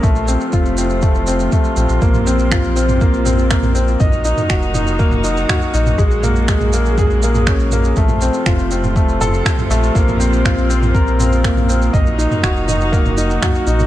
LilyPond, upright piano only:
\new Staff \with { instrumentName = "Upright piano" } { \time 4/4 \key bes \minor \tempo 4 = 121 a8 c'8 f'8 c'8 a8 c'8 a8 c'8 | bes8 c'8 f'8 c'8 bes8 c'8 bes8 c'8 | ees''8 ees'8 ges'8 ees'8 bes8 ees'8 ges'8 ees'8 | aes8 bes8 aes8 bes8 aes'8 bes8 des'8 bes8 |
a8 c'8 f'8 c'8 a8 a'8 a'8 a8 | bes8 c'8 f'8 c'8 bes'8 c'8 bes8 c'8 | ees''8 ees'8 ges'8 ees'8 bes8 ees'8 ges'8 ees'8 | }